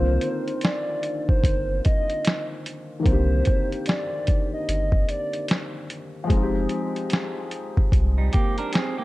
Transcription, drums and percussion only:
0.21 closed hi-hat medium
0.48 closed hi-hat soft
0.61 snare loud
0.61 closed hi-hat medium
1.03 closed hi-hat medium
1.29 kick medium
1.44 kick medium
1.44 closed hi-hat medium
1.85 kick medium
1.85 closed hi-hat medium
2.10 closed hi-hat soft
2.25 snare loud
2.25 closed hi-hat medium
2.66 closed hi-hat medium
3.06 kick loud
3.06 closed hi-hat medium
3.45 kick medium
3.45 closed hi-hat medium
3.72 closed hi-hat soft
3.86 snare loud
3.86 closed hi-hat medium
4.27 kick medium
4.27 closed hi-hat medium
4.69 closed hi-hat medium
4.92 kick medium
5.09 closed hi-hat medium
5.33 closed hi-hat soft
5.48 snare loud
5.48 closed hi-hat medium
5.90 closed hi-hat medium
6.30 kick loud
6.30 closed hi-hat medium
6.69 closed hi-hat medium
6.96 closed hi-hat soft
7.10 snare loud
7.10 closed hi-hat medium
7.51 closed hi-hat medium
7.77 kick medium
7.92 kick loud
7.92 closed hi-hat medium
8.33 kick medium
8.33 closed hi-hat medium
8.58 closed hi-hat soft
8.73 snare loud
8.73 closed hi-hat medium

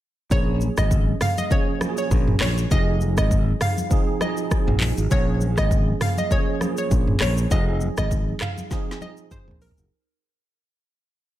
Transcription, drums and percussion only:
0.31 kick loud
0.31 low conga medium
0.31 shaker medium
0.61 high conga medium
0.61 shaker medium
0.77 kick medium
0.77 cross-stick loud
0.77 shaker medium
0.91 kick loud
0.91 low conga medium
0.91 shaker medium
1.08 high conga medium
1.21 cross-stick loud
1.21 mid tom medium
1.21 open hi-hat medium
1.21 low conga medium
1.21 shaker medium
1.37 high conga medium
1.37 shaker medium
1.51 kick loud
1.51 low conga medium
1.51 shaker medium
1.81 cross-stick loud
1.81 high conga medium
1.81 shaker soft
1.97 shaker medium
2.11 kick loud
2.11 shaker medium
2.28 mid tom loud
2.41 cross-stick loud
2.41 clap loud
2.41 open hi-hat medium
2.41 high conga medium
2.41 shaker medium
2.58 shaker medium
2.71 kick loud
2.71 low conga medium
2.71 shaker medium
3.01 high conga medium
3.01 shaker medium
3.17 kick medium
3.17 cross-stick loud
3.17 shaker medium
3.31 kick loud
3.31 low conga medium
3.31 shaker medium
3.48 high conga medium
3.61 cross-stick loud
3.61 mid tom medium
3.61 open hi-hat medium
3.61 low conga medium
3.61 shaker medium
3.77 high conga medium
3.77 shaker medium
3.91 kick loud
3.91 low conga medium
3.91 shaker medium
4.21 cross-stick loud
4.21 high conga medium
4.21 shaker medium
4.37 shaker medium
4.51 kick loud
4.51 cross-stick loud
4.51 shaker medium
4.67 mid tom loud
4.80 clap loud
4.80 open hi-hat medium
4.80 high conga medium
4.80 shaker medium
4.98 shaker medium
5.11 kick loud
5.11 low conga medium
5.11 shaker medium
5.41 high conga medium
5.41 shaker medium
5.57 kick medium
5.57 cross-stick loud
5.57 shaker medium
5.71 kick loud
5.71 low conga medium
5.71 shaker medium
5.88 high conga medium
6.01 cross-stick loud
6.01 mid tom loud
6.01 open hi-hat medium
6.01 low conga medium
6.01 shaker medium
6.17 high conga medium
6.17 shaker medium
6.31 kick loud
6.31 low conga medium
6.31 shaker medium
6.61 cross-stick medium
6.61 high conga medium
6.61 shaker medium
6.77 shaker medium
6.91 kick loud
6.91 shaker medium
7.07 mid tom loud
7.21 cross-stick loud
7.21 clap loud
7.21 open hi-hat medium
7.21 high conga medium
7.21 shaker medium
7.38 shaker medium
7.51 kick loud
7.51 low conga medium
7.51 shaker medium
7.81 high conga medium
7.81 shaker medium
7.97 kick medium
7.97 cross-stick loud
7.97 shaker medium
8.11 kick loud
8.11 low conga medium
8.11 shaker medium
8.29 high conga medium
8.41 cross-stick loud
8.41 clap loud
8.41 mid tom medium
8.41 low conga medium
8.41 shaker medium
8.57 high conga medium
8.57 shaker medium
8.71 kick loud
8.71 snare medium
8.71 low conga medium
8.71 shaker medium
8.91 snare medium
9.01 high conga medium
9.01 shaker medium
9.17 shaker medium
9.31 kick loud
9.31 mid tom medium
9.31 shaker medium
9.51 floor tom loud
9.61 open hi-hat medium
9.61 high conga medium
9.61 shaker medium
9.71 floor tom medium
9.78 shaker medium

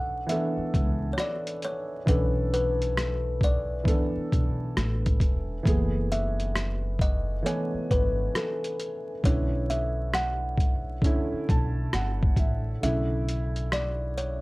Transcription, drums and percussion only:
0.29 closed hi-hat medium
0.74 kick medium
0.74 closed hi-hat medium
1.18 cross-stick loud
1.18 closed hi-hat medium
1.47 closed hi-hat medium
1.62 closed hi-hat medium
2.07 kick loud
2.07 closed hi-hat medium
2.54 closed hi-hat medium
2.82 closed hi-hat soft
2.97 cross-stick loud
2.97 closed hi-hat medium
3.41 kick medium
3.41 closed hi-hat medium
3.85 kick loud
3.85 closed hi-hat medium
4.32 kick medium
4.32 closed hi-hat medium
4.77 cross-stick loud
4.77 closed hi-hat medium
5.06 kick medium
5.06 closed hi-hat medium
5.20 kick medium
5.20 closed hi-hat medium
5.65 kick loud
5.65 closed hi-hat medium
6.12 closed hi-hat medium
6.40 closed hi-hat soft
6.55 cross-stick loud
6.55 closed hi-hat medium
6.99 kick medium
6.99 closed hi-hat medium
7.46 closed hi-hat medium
7.91 kick medium
7.91 closed hi-hat medium
8.35 cross-stick loud
8.35 closed hi-hat medium
8.64 closed hi-hat medium
8.80 closed hi-hat medium
9.24 kick loud
9.24 closed hi-hat medium
9.71 closed hi-hat medium
10.14 cross-stick loud
10.14 closed hi-hat medium
10.58 kick medium
10.58 closed hi-hat medium
11.02 kick loud
11.02 closed hi-hat medium
11.49 kick medium
11.49 closed hi-hat medium
11.93 cross-stick loud
11.93 closed hi-hat medium
12.23 kick medium
12.36 kick medium
12.36 closed hi-hat medium
12.83 closed hi-hat medium
13.29 closed hi-hat medium
13.56 closed hi-hat soft
13.72 cross-stick loud
13.72 closed hi-hat medium
14.18 closed hi-hat medium

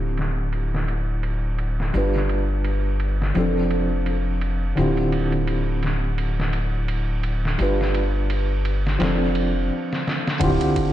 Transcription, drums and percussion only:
0.17 snare soft
0.17 ride medium
0.53 ride medium
0.75 snare soft
0.88 ride medium
1.23 ride medium
1.58 ride medium
1.80 snare soft
1.94 ride medium
2.16 snare soft
2.29 ride medium
2.64 ride medium
3.00 ride medium
3.22 snare soft
3.35 ride medium
3.71 ride medium
4.06 ride medium
4.41 ride medium
4.77 ride medium
4.97 ride soft
5.12 ride medium
5.32 ride soft
5.47 ride medium
5.83 snare soft
5.83 ride medium
6.18 ride medium
6.40 snare medium
6.53 ride medium
6.88 ride medium
7.23 ride medium
7.45 snare soft
7.59 ride medium
7.81 snare soft
7.95 ride medium
8.30 ride medium
8.65 ride medium
8.87 snare soft
9.00 snare medium
9.00 ride medium
9.35 ride medium
9.93 snare soft
10.07 snare medium
10.27 snare medium
10.41 kick loud
10.41 ride medium
10.61 ride soft
10.76 kick medium
10.76 ride medium

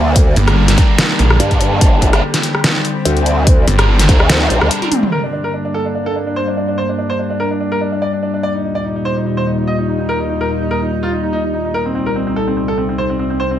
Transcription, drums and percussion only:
0.16 kick loud
0.16 closed hi-hat medium
0.36 closed hi-hat medium
0.48 cross-stick medium
0.48 closed hi-hat soft
0.68 snare soft
0.68 closed hi-hat medium
0.78 kick loud
0.78 closed hi-hat medium
0.98 snare loud
0.98 closed hi-hat medium
1.19 closed hi-hat medium
1.30 cross-stick medium
1.40 closed hi-hat medium
1.51 kick medium
1.51 closed hi-hat soft
1.61 closed hi-hat medium
1.81 kick loud
1.81 closed hi-hat medium
2.02 kick medium
2.02 closed hi-hat medium
2.13 cross-stick medium
2.13 closed hi-hat soft
2.34 snare soft
2.34 closed hi-hat medium
2.43 closed hi-hat medium
2.55 cross-stick medium
2.64 snare loud
2.64 closed hi-hat medium
2.85 closed hi-hat medium
3.05 closed hi-hat medium
3.17 closed hi-hat soft
3.26 closed hi-hat medium
3.47 kick loud
3.47 closed hi-hat medium
3.67 closed hi-hat medium
3.79 cross-stick medium
3.79 closed hi-hat soft
3.99 snare soft
3.99 closed hi-hat medium
4.09 kick loud
4.09 closed hi-hat medium
4.20 cross-stick medium
4.29 snare loud
4.29 closed hi-hat medium
4.50 closed hi-hat medium
4.61 cross-stick medium
4.71 closed hi-hat medium
4.82 closed hi-hat soft
4.82 high tom medium
4.92 closed hi-hat medium
4.92 mid tom medium
5.03 mid tom medium

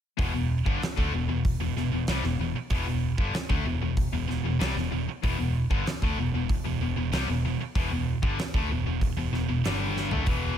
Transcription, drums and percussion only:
0.19 kick loud
0.19 open hi-hat medium
0.66 kick loud
0.82 snare loud
0.82 open hi-hat soft
0.98 kick medium
1.45 kick loud
1.45 open hi-hat medium
1.77 snare soft
2.07 snare loud
2.07 open hi-hat medium
2.24 snare soft
2.70 kick loud
2.70 open hi-hat medium
3.18 kick loud
3.34 snare loud
3.34 open hi-hat medium
3.50 kick medium
3.97 kick loud
3.97 open hi-hat soft
4.30 snare soft
4.60 snare loud
4.60 open hi-hat soft
4.77 snare soft
5.24 kick loud
5.24 open hi-hat medium
5.71 kick loud
5.86 snare medium
5.86 open hi-hat medium
6.02 kick medium
6.49 kick loud
6.49 open hi-hat medium
7.13 snare loud
7.13 open hi-hat medium
7.75 kick loud
7.75 open hi-hat medium
8.23 kick loud
8.39 snare loud
8.39 open hi-hat medium
8.54 kick loud
9.01 kick medium
9.01 open hi-hat soft
9.34 snare soft
9.65 snare loud
9.65 open hi-hat medium
9.97 snare medium
10.11 floor tom medium
10.26 kick loud
10.26 open hi-hat medium

